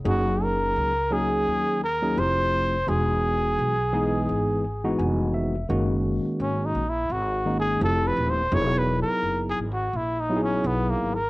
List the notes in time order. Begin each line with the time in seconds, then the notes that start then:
0.05 F#1 F#3 A#3 C#4 D#4 F#4 G#4
0.43 A#4
0.76 C#2
1.11 F#3 A#3 C#4 D#4 G#4
1.47 D#2
1.84 A#4
2.02 F#3 A#3 C#4 D#4 G#4
2.16 F1 F3 A3 C4 E4 G4 C5
2.87 E1 E3 G#3 B3 D#4 F#4 G#4
3.59 B1
3.93 E3 G#3 B3 D#4 G#4
4.29 G#1
4.84 E3 G#3 B3 D#4 F#4
4.99 F1 G#5
5.34 E5
5.69 F#1 D#3 G#3 A#3 C#4 F#4
6.25 muted upright bass stroke
6.40 G#1 C#4
6.66 D#4
6.75 A#1
6.89 E4
7.10 G#1 F#4
7.46 D#3 G#3 A#3 C#4 D#4
7.60 G#4
7.81 F1 F3 A3 C4 E4 G4 A4
8.07 B4
8.17 D#1
8.30 C5
8.52 E1 F#3 B3 D#4 E4 G#4 C#5
8.78 B4
9.02 A#4
9.08 muted upright bass stroke
9.23 F#1
9.49 G#4
9.58 G#1
9.73 F#4
9.93 A#1 E4
10.20 D#4
10.29 F#3 B3 D#4 E4 G4
10.36 G#4
10.44 C#4
10.64 B1 B3
10.90 A#3
11.00 G#1
11.14 A#4